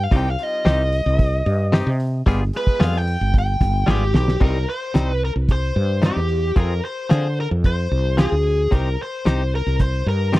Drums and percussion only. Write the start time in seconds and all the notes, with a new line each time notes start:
0.12 kick, open hi-hat
0.39 open hi-hat
0.66 snare, open hi-hat
0.93 open hi-hat
1.07 snare
1.19 kick, open hi-hat
1.46 open hi-hat
1.73 snare, open hi-hat
2.00 open hi-hat
2.26 kick, open hi-hat
2.53 open hi-hat
2.67 kick
2.80 snare, open hi-hat
3.07 open hi-hat
3.34 kick, open hi-hat
3.61 kick, snare, open hi-hat
3.88 snare
4.14 snare
4.28 snare
4.41 kick, crash
4.95 snare, closed hi-hat
5.49 kick, closed hi-hat
6.02 snare, closed hi-hat
6.56 kick, closed hi-hat
7.10 snare, closed hi-hat
7.64 kick, closed hi-hat
8.18 snare, closed hi-hat
8.72 kick, closed hi-hat
9.26 snare, closed hi-hat
9.67 snare
9.80 kick, closed hi-hat
10.34 snare, closed hi-hat